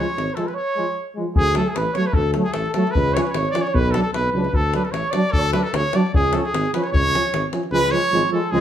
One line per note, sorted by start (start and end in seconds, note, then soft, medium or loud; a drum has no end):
0.00 0.36 C#5 medium
0.00 0.37 C#5 loud
0.10 davul high soft
0.17 0.28 G#1 medium
0.17 davul high medium
0.30 davul high soft
0.34 0.45 F3 medium
0.34 0.45 G#3 medium
0.34 0.47 A4 medium
0.34 0.49 A4 medium
0.34 davul high medium
0.45 0.53 B4 medium
0.45 0.56 B4 medium
0.45 davul high soft
0.54 1.11 C#5 medium
0.54 1.12 C#5 loud
0.77 0.86 F3 medium
0.77 0.84 G#3 medium
1.16 1.26 F3 medium
1.16 1.24 G#3 medium
1.35 1.58 D2 loud
1.35 1.54 G#4 medium
1.35 1.55 G#4 loud
1.35 davul low loud
1.55 1.64 F#3 medium
1.55 1.65 A3 medium
1.55 1.67 A4 medium
1.55 1.71 A4 loud
1.55 davul high medium
1.66 1.76 G#4 medium
1.66 1.79 G#4 medium
1.66 davul high soft
1.74 1.87 A1 medium
1.74 1.93 B4 medium
1.74 1.95 B4 medium
1.74 davul high medium
1.86 davul high soft
1.93 2.04 F#3 medium
1.93 2.08 C#5 medium
1.93 2.08 C#5 loud
1.93 davul high medium
1.99 2.06 A3 medium
2.05 2.15 B4 medium
2.05 2.16 B4 medium
2.05 davul high soft
2.13 2.37 D2 medium
2.13 2.32 A4 loud
2.13 2.34 A4 loud
2.13 davul low loud
2.33 2.43 F#3 medium
2.33 2.35 A4 soft
2.33 2.36 A4 medium
2.33 davul high medium
2.37 2.45 A3 medium
2.43 2.54 G#4 medium
2.43 2.56 G#4 medium
2.43 davul high soft
2.53 2.66 A1 medium
2.53 2.73 A4 medium
2.53 2.71 A4 medium
2.53 davul high medium
2.66 davul high soft
2.72 2.96 A4 loud
2.72 2.93 A4 loud
2.72 davul high medium
2.76 2.83 F#3 medium
2.76 2.84 A3 medium
2.87 3.16 B4 loud
2.87 davul high soft
2.94 3.18 C#2 loud
2.94 3.14 B4 loud
2.94 davul low loud
3.13 3.23 F3 medium
3.13 3.20 C#5 medium
3.13 3.16 C#5 loud
3.13 davul high medium
3.17 3.25 C#4 medium
3.17 3.24 B4 medium
3.17 3.21 C#5 loud
3.22 3.31 B4 medium
3.22 3.25 C#5 medium
3.26 3.37 B4 medium
3.26 davul high soft
3.30 3.50 C#5 medium
3.34 3.45 G#1 medium
3.34 3.55 C#5 loud
3.34 davul high medium
3.45 davul high soft
3.51 3.62 F3 medium
3.51 3.63 D5 loud
3.55 3.64 C#4 medium
3.55 3.69 D5 loud
3.55 davul high medium
3.62 3.76 C#5 medium
3.67 3.81 C#5 medium
3.67 davul high soft
3.74 3.96 B1 loud
3.74 3.93 B4 loud
3.74 davul low loud
3.80 3.98 B4 loud
3.85 davul high soft
3.91 4.02 F#3 medium
3.91 4.02 A4 loud
3.91 davul high medium
3.96 4.04 D4 medium
3.96 4.06 A4 medium
4.02 4.12 A4 medium
4.07 4.14 A4 medium
4.13 4.31 B1 medium
4.13 4.32 B4 loud
4.13 davul high medium
4.20 4.35 B4 medium
4.26 davul high soft
4.33 4.51 C#2 medium
4.33 4.42 F#3 medium
4.33 4.43 D4 medium
4.33 4.56 B4 medium
4.40 4.59 B4 medium
4.44 davul high soft
4.53 4.75 D2 medium
4.53 4.74 A4 loud
4.53 davul low medium
4.57 4.75 A4 medium
4.74 4.83 F#3 medium
4.74 4.82 D4 medium
4.74 4.86 B4 medium
4.74 davul high medium
4.78 4.90 B4 medium
4.84 4.93 A4 medium
4.84 davul high soft
4.89 5.03 A1 medium
4.89 4.99 A4 soft
4.89 5.12 C#5 medium
4.94 davul high medium
4.98 5.20 C#5 medium
5.04 davul high soft
5.11 5.22 F#3 medium
5.11 5.22 D4 medium
5.11 5.33 D5 loud
5.11 davul high medium
5.18 5.42 D5 loud
5.25 davul high soft
5.32 5.55 D2 medium
5.32 5.52 A4 loud
5.32 davul low loud
5.41 5.56 A4 medium
5.53 5.61 F#3 medium
5.53 5.62 D4 medium
5.53 5.65 B4 loud
5.53 davul high medium
5.58 5.70 B4 medium
5.63 5.77 A4 loud
5.63 davul high soft
5.68 5.78 A4 medium
5.73 5.84 D2 medium
5.73 5.97 C#5 loud
5.73 5.99 C#5 loud
5.73 davul high medium
5.86 davul high soft
5.93 6.02 F#3 medium
5.93 6.03 D4 medium
5.93 6.14 D5 loud
5.93 davul high medium
5.97 6.15 D5 loud
6.06 davul high soft
6.14 6.35 C#2 medium
6.14 6.36 G#4 loud
6.14 6.40 G#4 medium
6.14 davul low loud
6.33 6.41 F3 medium
6.33 6.43 C#4 medium
6.33 6.45 A4 medium
6.33 davul high medium
6.39 6.52 A4 medium
6.44 6.72 G#4 loud
6.44 davul high soft
6.50 6.64 G#1 medium
6.50 6.76 G#4 medium
6.54 davul high medium
6.65 davul high soft
6.74 6.81 F3 medium
6.74 6.83 C#4 medium
6.74 6.85 B4 medium
6.74 6.89 B4 medium
6.74 davul high medium
6.83 6.92 C#5 medium
6.83 davul high soft
6.88 6.94 C#5 medium
6.92 7.14 C#2 loud
6.92 7.48 C#5 loud
6.92 davul low loud
6.98 7.51 C#5 medium
7.06 davul high soft
7.14 7.22 F3 medium
7.14 7.21 C#4 medium
7.14 davul high medium
7.26 davul high soft
7.33 7.44 G#1 medium
7.33 davul high medium
7.52 7.61 F3 medium
7.52 7.60 C#4 medium
7.52 davul high medium
7.63 davul high soft
7.71 7.93 C#2 loud
7.71 7.81 F3 medium
7.71 7.80 G#3 medium
7.71 7.93 B4 loud
7.91 8.00 F3 medium
7.91 8.01 G#3 medium
7.91 8.31 C#5 loud
8.12 8.23 G#1 medium
8.12 8.20 F3 medium
8.12 8.21 G#3 medium
8.30 8.39 F3 medium
8.30 8.41 G#3 medium
8.30 8.54 A4 medium
8.30 8.53 A4 loud
8.51 8.61 C#2 loud
8.51 8.60 F3 medium
8.51 8.60 G#3 medium
8.51 8.61 G#4 loud